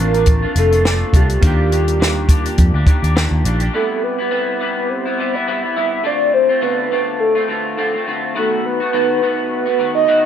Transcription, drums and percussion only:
0.14 closed hi-hat soft
0.26 kick medium
0.26 closed hi-hat medium
0.56 closed hi-hat medium
0.72 closed hi-hat medium
0.85 snare loud
1.14 kick medium
1.14 closed hi-hat medium
1.29 closed hi-hat soft
1.42 kick loud
1.42 closed hi-hat medium
1.72 closed hi-hat medium
1.88 closed hi-hat medium
2.02 snare loud
2.29 kick medium
2.29 closed hi-hat medium
2.46 closed hi-hat soft
2.58 kick medium
2.58 closed hi-hat medium
2.87 kick medium
2.87 closed hi-hat medium
3.04 closed hi-hat medium
3.17 snare loud
3.45 closed hi-hat medium
3.60 closed hi-hat soft

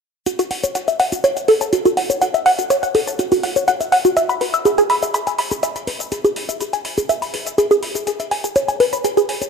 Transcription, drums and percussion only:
0.26 closed hi-hat medium
0.26 shaker soft
0.39 closed hi-hat soft
0.39 shaker soft
0.51 open hi-hat medium
0.64 closed hi-hat soft
0.64 shaker medium
0.75 closed hi-hat medium
0.75 shaker soft
0.88 closed hi-hat soft
0.88 shaker soft
1.00 open hi-hat medium
1.12 closed hi-hat soft
1.12 shaker medium
1.24 closed hi-hat medium
1.24 shaker soft
1.37 closed hi-hat soft
1.37 shaker soft
1.48 open hi-hat medium
1.61 closed hi-hat soft
1.61 shaker medium
1.73 closed hi-hat medium
1.73 shaker soft
1.85 closed hi-hat soft
1.85 shaker soft
1.97 open hi-hat medium
2.10 closed hi-hat soft
2.10 shaker medium
2.22 closed hi-hat medium
2.22 shaker soft
2.34 closed hi-hat soft
2.34 shaker soft
2.46 open hi-hat loud
2.59 closed hi-hat soft
2.59 shaker medium
2.70 closed hi-hat medium
2.70 shaker soft
2.83 closed hi-hat soft
2.83 shaker soft
2.95 open hi-hat medium
3.07 closed hi-hat soft
3.07 shaker medium
3.19 closed hi-hat medium
3.19 shaker soft
3.32 open hi-hat medium
3.32 shaker soft
3.43 open hi-hat loud
3.56 closed hi-hat soft
3.56 shaker medium
3.68 closed hi-hat medium
3.68 shaker soft
3.81 closed hi-hat soft
3.81 shaker soft
3.92 open hi-hat loud
4.05 closed hi-hat soft
4.05 shaker medium
4.17 closed hi-hat medium
4.17 shaker soft
4.29 closed hi-hat soft
4.29 shaker soft
4.41 open hi-hat medium
4.54 closed hi-hat soft
4.54 shaker medium
4.65 closed hi-hat medium
4.65 shaker soft
4.78 closed hi-hat soft
4.78 shaker soft
4.90 open hi-hat medium
5.02 closed hi-hat soft
5.02 shaker medium
5.14 closed hi-hat medium
5.14 shaker soft
5.27 closed hi-hat soft
5.27 shaker soft
5.38 open hi-hat loud
5.51 closed hi-hat soft
5.51 shaker medium
5.63 closed hi-hat medium
5.63 shaker soft
5.76 closed hi-hat soft
5.76 shaker soft
5.87 open hi-hat loud
6.00 closed hi-hat soft
6.00 shaker medium
6.12 closed hi-hat medium
6.12 shaker soft
6.25 closed hi-hat soft
6.25 shaker soft
6.36 open hi-hat medium
6.49 closed hi-hat soft
6.49 shaker medium
6.61 closed hi-hat medium
6.61 shaker soft
6.73 closed hi-hat soft
6.73 shaker soft
6.85 open hi-hat medium
6.98 closed hi-hat soft
6.98 shaker medium
7.09 closed hi-hat medium
7.09 shaker soft
7.22 open hi-hat medium
7.22 shaker soft
7.34 open hi-hat loud
7.47 closed hi-hat soft
7.47 shaker medium
7.58 closed hi-hat medium
7.58 shaker soft
7.71 closed hi-hat soft
7.71 shaker soft
7.83 open hi-hat loud
7.95 closed hi-hat soft
7.95 shaker medium
8.07 closed hi-hat medium
8.07 shaker medium
8.20 closed hi-hat soft
8.20 shaker soft
8.31 open hi-hat medium
8.44 closed hi-hat soft
8.44 shaker medium
8.56 closed hi-hat medium
8.56 shaker soft
8.69 closed hi-hat soft
8.69 shaker soft
8.80 open hi-hat medium
8.93 closed hi-hat soft
8.93 shaker medium
9.05 closed hi-hat medium
9.05 shaker medium
9.17 closed hi-hat soft
9.17 shaker soft
9.29 open hi-hat medium
9.42 closed hi-hat soft
9.42 shaker medium

